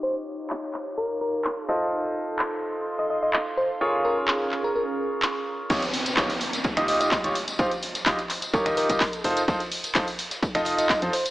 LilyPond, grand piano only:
\new Staff \with { instrumentName = "Grand piano" } { \time 4/4 \key ees \mixolydian \tempo 4 = 127 <f' g' des'' ees''>2.~ <f' g' des'' ees''>8 <f' a' c'' ees''>8~ | <f' a' c'' ees''>1 | <f' aes' bes' des''>1 | <ees' f' g' des''>16 r8. <ees' f' g' des''>16 r4 <ees' f' g' ees''>4 <ees' f' g' des''>16 r8 |
<ees' f' g' f''>16 r8. <ees' f' g' ees''>16 r8. <ees' f' g' des''>16 <ees' f' g' ees''>8 <ees' f' g' ees''>16 r8 <ees' f' a' c''>16 r16 | <ees' f' a' c''>16 r8. <ees' f' a' c''>16 r4 <ees' f' a' ees''>4 <ees' f' a' c''>16 r8 | }